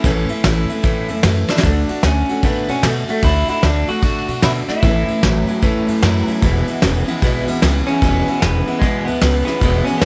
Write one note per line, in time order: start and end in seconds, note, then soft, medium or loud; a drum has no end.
0.04 0.27 A1 loud
0.04 0.29 A2 medium
0.04 0.30 E3 medium
0.04 0.30 A3 medium
0.04 0.29 C#4 loud
0.04 0.28 E4 loud
0.04 kick loud
0.04 ride medium
0.29 0.43 A3 soft
0.29 0.44 C#4 medium
0.29 0.44 E4 medium
0.29 muted upright bass stroke medium
0.29 ride medium
0.44 0.67 A1 loud
0.44 0.69 E3 medium
0.44 0.70 A3 medium
0.44 0.69 C#4 medium
0.44 0.68 E4 medium
0.44 snare loud
0.44 ride medium
0.69 0.83 A3 medium
0.69 0.83 C#4 medium
0.69 0.83 E4 medium
0.69 muted upright bass stroke medium
0.69 ride medium
0.83 1.09 A2 medium
0.83 1.09 E3 medium
0.83 1.09 A3 medium
0.83 1.08 C#4 medium
0.83 1.07 E4 loud
0.83 kick loud
0.83 ride medium
1.08 1.22 F#2 loud
1.08 1.23 A3 medium
1.08 1.24 C#4 medium
1.08 1.23 E4 medium
1.08 ride medium
1.23 1.46 F#2 loud
1.23 1.49 E3 medium
1.23 1.49 A3 medium
1.23 1.49 C#4 medium
1.23 1.48 E4 medium
1.23 snare loud
1.23 ride medium
1.48 1.64 A3 soft
1.48 1.64 C#4 soft
1.48 2.05 D4 loud
1.48 1.64 E4 medium
1.48 muted upright bass stroke medium
1.48 snare medium
1.58 snare medium
1.63 1.86 D2 loud
1.63 1.89 D3 medium
1.63 1.89 A3 medium
1.63 1.89 D4 medium
1.63 1.88 F#4 medium
1.63 kick loud
1.63 ride medium
1.89 2.03 A3 soft
1.89 2.04 D4 medium
1.89 2.04 F#4 soft
1.89 muted upright bass stroke medium
1.89 ride medium
2.03 2.26 D2 medium
2.03 2.29 D3 medium
2.03 2.29 A3 medium
2.03 2.44 C#4 medium
2.03 2.29 D4 medium
2.03 2.28 F#4 medium
2.03 snare loud
2.03 ride medium
2.28 2.42 A3 soft
2.28 2.43 D4 soft
2.28 2.43 F#4 medium
2.28 muted upright bass stroke medium
2.28 ride medium
2.43 2.66 A2 loud
2.43 2.69 D3 medium
2.43 2.69 A3 medium
2.43 2.69 B3 medium
2.43 2.68 D4 medium
2.43 2.67 F#4 medium
2.43 kick loud
2.43 ride medium
2.68 2.82 B2 loud
2.68 2.82 A3 soft
2.68 2.84 C#4 medium
2.68 2.82 D4 medium
2.68 2.83 F#4 medium
2.68 ride medium
2.82 3.06 B2 medium
2.82 3.08 D3 medium
2.82 3.09 A3 medium
2.82 2.92 A3 medium
2.82 3.08 D4 medium
2.82 3.07 F#4 medium
2.82 snare loud
2.82 ride loud
3.08 3.22 A3 soft
3.08 3.24 A3 loud
3.08 3.22 D4 medium
3.08 3.22 F#4 medium
3.08 muted upright bass stroke medium
3.08 ride medium
3.22 3.46 D2 medium
3.22 3.48 D3 medium
3.22 3.48 A3 medium
3.22 3.48 D4 medium
3.22 3.48 E4 loud
3.22 3.47 F#4 medium
3.22 kick loud
3.22 ride medium
3.48 3.62 A3 soft
3.48 3.63 D4 soft
3.48 3.64 E4 loud
3.48 3.63 F#4 soft
3.48 muted upright bass stroke medium
3.48 ride medium
3.63 3.86 D2 medium
3.63 3.88 D3 medium
3.63 3.88 A3 medium
3.63 3.89 D4 loud
3.63 3.88 D4 medium
3.63 3.86 F#4 medium
3.63 snare loud
3.63 ride medium
3.87 4.02 A3 soft
3.87 4.02 D4 soft
3.87 4.02 F#4 medium
3.87 4.43 F#4 loud
3.87 muted upright bass stroke medium
3.87 ride medium
4.02 4.25 A2 loud
4.02 4.28 D3 medium
4.02 4.28 A3 medium
4.02 4.28 D4 medium
4.02 4.27 F#4 medium
4.02 kick loud
4.02 ride medium
4.28 4.41 B2 loud
4.28 4.42 A3 soft
4.28 4.43 D4 medium
4.28 4.43 F#4 medium
4.28 ride medium
4.42 4.66 B2 medium
4.42 4.68 D3 medium
4.42 4.69 A3 medium
4.42 4.68 D4 medium
4.42 4.50 E4 loud
4.42 4.67 F#4 medium
4.42 snare loud
4.42 ride medium
4.68 4.82 A3 soft
4.68 4.83 D4 soft
4.68 5.44 E4 loud
4.68 4.83 F#4 medium
4.68 muted upright bass stroke medium
4.68 snare soft
4.68 ride medium
4.82 5.05 A1 loud
4.82 5.20 A2 medium
4.82 5.08 A2 medium
4.82 5.08 E3 medium
4.82 5.20 E3 loud
4.82 5.08 A3 medium
4.82 5.08 C#4 medium
4.82 5.07 E4 loud
4.82 kick loud
4.82 ride medium
5.08 5.22 A3 soft
5.08 5.23 C#4 medium
5.08 5.23 E4 medium
5.08 muted upright bass stroke medium
5.08 ride medium
5.22 5.46 A1 loud
5.22 5.45 A2 medium
5.22 5.48 E3 medium
5.22 5.46 F#3 medium
5.22 5.48 A3 medium
5.22 5.47 C#4 medium
5.22 5.46 E4 medium
5.22 snare loud
5.22 ride medium
5.47 5.61 A2 medium
5.47 5.61 F#3 loud
5.47 5.62 A3 medium
5.47 5.62 C#4 medium
5.47 5.62 E4 medium
5.47 muted upright bass stroke medium
5.47 ride medium
5.62 5.85 E2 medium
5.62 5.88 A2 medium
5.62 6.00 A2 medium
5.62 5.88 E3 loud
5.62 6.00 E3 loud
5.62 5.88 A3 medium
5.62 5.87 C#4 loud
5.62 5.86 E4 loud
5.62 kick loud
5.62 ride medium
5.87 6.01 F#2 loud
5.87 6.02 A3 medium
5.87 6.02 C#4 medium
5.87 6.02 E4 medium
5.87 ride medium
6.02 6.25 F#2 loud
6.02 6.25 A2 medium
6.02 6.28 E3 medium
6.02 6.26 F#3 loud
6.02 6.28 A3 medium
6.02 6.27 C#4 medium
6.02 6.26 E4 medium
6.02 snare loud
6.02 ride loud
6.27 6.41 A2 medium
6.27 6.41 F#3 medium
6.27 6.43 A3 medium
6.27 6.43 C#4 medium
6.27 6.42 E4 medium
6.27 muted upright bass stroke medium
6.27 ride medium
6.42 6.65 E1 medium
6.42 6.79 E2 medium
6.42 6.68 E2 medium
6.42 6.68 B2 loud
6.42 6.80 B2 loud
6.42 6.68 E3 loud
6.42 6.68 G#3 loud
6.42 6.67 B3 loud
6.42 6.66 E4 loud
6.42 kick loud
6.42 ride medium
6.67 6.81 E3 soft
6.67 6.82 G#3 medium
6.67 6.82 B3 medium
6.67 6.82 E4 medium
6.67 muted upright bass stroke medium
6.67 ride medium
6.82 7.05 E1 loud
6.82 7.05 E2 medium
6.82 7.05 C#3 medium
6.82 7.08 E3 medium
6.82 7.08 G#3 medium
6.82 7.07 B3 medium
6.82 7.07 E4 medium
6.82 snare loud
6.82 ride medium
7.07 7.21 E2 medium
7.07 7.21 C#3 medium
7.07 7.22 E3 soft
7.07 7.22 G#3 medium
7.07 7.22 B3 medium
7.07 7.22 E4 medium
7.07 muted upright bass stroke medium
7.07 ride medium
7.22 7.45 B1 medium
7.22 7.48 E2 medium
7.22 7.59 E2 medium
7.22 7.48 B2 loud
7.22 7.60 B2 loud
7.22 7.48 E3 medium
7.22 7.48 G#3 medium
7.22 7.48 B3 loud
7.22 7.47 E4 loud
7.22 kick loud
7.22 ride medium
7.47 7.61 D2 loud
7.47 7.62 E3 soft
7.47 7.62 G#3 medium
7.47 7.63 B3 medium
7.47 7.63 E4 medium
7.47 ride medium
7.62 7.85 C#2 medium
7.62 7.85 C#3 medium
7.62 7.88 E3 medium
7.62 7.88 G#3 medium
7.62 7.88 B3 medium
7.62 7.87 E4 medium
7.62 snare loud
7.62 ride loud
7.87 8.01 E2 medium
7.87 8.01 C#3 medium
7.87 8.02 E3 soft
7.87 8.02 G#3 soft
7.87 8.03 B3 medium
7.87 8.40 C#4 loud
7.87 8.03 E4 medium
7.87 muted upright bass stroke medium
7.87 ride medium
8.02 8.25 E1 medium
8.02 8.39 E2 medium
8.02 8.28 E2 medium
8.02 8.39 B2 medium
8.02 8.28 B2 medium
8.02 8.28 E3 medium
8.02 8.28 G#3 medium
8.02 8.27 B3 loud
8.02 8.27 E4 loud
8.02 kick loud
8.02 ride medium
8.27 8.41 E3 soft
8.27 8.42 G#3 soft
8.27 8.42 B3 medium
8.27 8.43 E4 medium
8.27 muted upright bass stroke medium
8.27 ride medium
8.40 8.65 E1 loud
8.40 8.65 E2 medium
8.40 8.65 C#3 medium
8.40 8.68 E3 medium
8.40 8.67 G#3 medium
8.40 8.82 B3 medium
8.40 8.67 B3 medium
8.40 snare loud
8.40 ride medium
8.44 8.66 E4 medium
8.67 8.80 E2 medium
8.67 8.81 C#3 medium
8.67 8.82 E3 soft
8.67 8.82 G#3 soft
8.67 8.82 B3 soft
8.67 8.82 E4 soft
8.67 muted upright bass stroke medium
8.67 ride medium
8.79 9.04 B1 medium
8.79 9.19 E2 medium
8.79 9.07 E2 medium
8.79 9.19 B2 loud
8.79 9.08 B2 medium
8.79 9.08 E3 medium
8.79 9.04 G#3 medium
8.79 9.08 G#3 medium
8.79 kick loud
8.79 ride medium
8.83 9.07 B3 medium
8.83 9.06 E4 loud
9.05 9.21 D2 loud
9.05 9.44 B3 medium
9.05 9.23 B3 soft
9.05 9.22 E4 medium
9.05 ride medium
9.09 9.21 E3 soft
9.09 9.22 G#3 soft
9.21 9.45 C#2 loud
9.21 9.44 E2 medium
9.21 9.44 C#3 medium
9.21 9.48 E3 medium
9.21 9.48 G#3 medium
9.21 9.47 B3 medium
9.21 9.46 E4 medium
9.21 snare loud
9.21 ride loud
9.45 9.59 E2 medium
9.45 9.60 C#3 medium
9.45 9.84 B3 medium
9.45 9.62 B3 soft
9.45 9.62 E4 medium
9.45 muted upright bass stroke medium
9.45 snare soft
9.45 ride medium
9.49 9.61 E3 soft
9.49 9.61 G#3 soft
9.60 9.84 E1 loud
9.60 9.98 E2 medium
9.60 9.87 E2 medium
9.60 9.98 B2 medium
9.60 9.87 B2 medium
9.60 9.88 E3 medium
9.60 9.87 G#3 loud
9.60 9.86 B3 medium
9.60 9.85 E4 loud
9.60 kick loud
9.60 ride medium
9.85 10.01 G#3 medium
9.85 10.02 B3 soft
9.85 9.97 C#4 medium
9.85 10.02 E4 medium
9.85 muted upright bass stroke medium
9.85 ride medium
9.89 10.00 E3 soft
9.98 10.05 E1 loud
9.98 10.05 E2 medium
9.98 10.05 C#3 medium
9.98 10.05 E3 medium
9.98 10.05 B3 loud
9.98 snare loud
9.98 ride medium